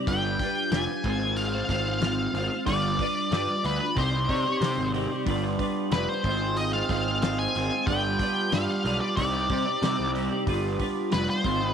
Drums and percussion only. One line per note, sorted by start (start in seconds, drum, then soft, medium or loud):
0.07 kick loud
0.07 open hi-hat medium
0.39 kick medium
0.39 open hi-hat soft
0.72 snare loud
0.72 open hi-hat medium
1.04 kick medium
1.04 open hi-hat soft
1.37 open hi-hat medium
1.69 kick medium
1.69 open hi-hat medium
2.02 snare loud
2.02 open hi-hat medium
2.35 open hi-hat soft
2.67 kick loud
2.67 open hi-hat medium
2.99 kick medium
2.99 open hi-hat medium
3.32 snare loud
3.32 open hi-hat medium
3.64 open hi-hat soft
3.97 kick medium
3.97 open hi-hat medium
4.29 kick medium
4.29 open hi-hat soft
4.62 snare loud
4.62 open hi-hat medium
4.94 open hi-hat soft
5.27 kick loud
5.27 open hi-hat medium
5.59 kick medium
5.59 open hi-hat soft
5.92 snare loud
5.92 open hi-hat medium
6.24 kick medium
6.24 open hi-hat soft
6.57 open hi-hat medium
6.89 kick medium
6.89 open hi-hat soft
7.22 snare loud
7.22 open hi-hat medium
7.55 open hi-hat medium
7.87 kick loud
7.87 open hi-hat medium
8.19 kick medium
8.19 open hi-hat medium
8.52 snare loud
8.52 open hi-hat medium
8.85 open hi-hat soft
9.17 kick loud
9.17 open hi-hat medium
9.50 kick medium
9.50 open hi-hat soft
9.83 snare loud
9.83 open hi-hat medium
10.15 open hi-hat soft
10.47 kick loud
10.47 open hi-hat medium
10.80 kick medium
10.80 open hi-hat medium
11.12 snare loud
11.12 open hi-hat medium
11.44 kick loud
11.44 open hi-hat soft